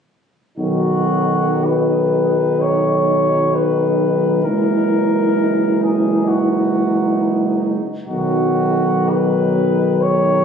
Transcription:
0.57 B1 D#3 F#3 D#4 F#4
1.65 B4
2.61 C#5
3.54 B4
4.43 F#1 E3 G#3 D#4 A#4
5.83 G#4
6.28 F#4
8.06 B1 D#3 F#3 D#4 F#4
9.09 B4
10.01 C#5

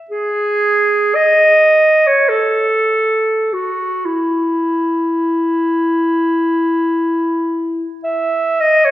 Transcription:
0.10 G#4
1.15 D#5
2.07 C#5
2.29 A4
3.53 F#4
4.06 E4
8.04 E5
8.60 D#5
8.85 C#5

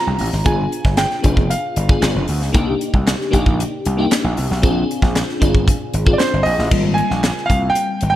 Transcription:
Already playing: C4 D4 F4 G4 A#5
0.07 C2
0.19 A1, open hi-hat
0.33 G#1, snare
0.44 G1 B3 D4 F4 G#4 G#5, kick, closed hi-hat
0.72 closed hi-hat
0.85 G1, kick, snare
0.97 G5, snare, clap, closed hi-hat
1.11 snare
1.22 F1 B3 D4 F4 G#4, kick, closed hi-hat
1.37 kick
1.50 F5, closed hi-hat
1.76 G1, closed hi-hat
1.89 B3 D4 F4 G#4, kick
2.01 G1 B3 D4 F4 G#4, snare, clap, closed hi-hat
2.15 F1
2.28 D2, open hi-hat
2.42 C#2, snare
2.53 C2 A#3 D4 D#4 G4, kick, closed hi-hat
2.81 closed hi-hat
2.94 C2, kick
3.07 snare, clap, closed hi-hat
3.21 snare
3.31 A#1 A#3 D4 D#4 G4, kick, closed hi-hat
3.46 kick
3.60 closed hi-hat
3.85 C2, closed hi-hat
3.97 A#3 D4 D#4 G4
4.11 snare, clap, closed hi-hat
4.24 A#1
4.37 C2, open hi-hat
4.51 B1, snare
4.62 A#1 C4 D4 F4 G#4, kick, closed hi-hat
4.91 closed hi-hat
5.02 A#1, kick, snare
5.15 snare, clap, closed hi-hat
5.29 snare
5.40 G1 C4 D4 F4 G#4, kick, closed hi-hat
5.55 kick
5.68 kick, closed hi-hat
5.94 G#1, closed hi-hat
6.06 C4 D4 F4 G#4, kick
6.13 D5
6.18 C5, snare, clap, closed hi-hat
6.33 G1
6.43 A#1 D#5, open hi-hat
6.59 A1, snare
6.71 G#1 G3 A#3 C4 F4, kick, crash
6.94 G#5, closed hi-hat
7.10 A#1, snare
7.23 snare, clap, closed hi-hat
7.37 snare
7.46 F5, kick
7.50 C2, closed hi-hat
7.70 G5
7.75 closed hi-hat
8.01 G#1, closed hi-hat
8.10 G5

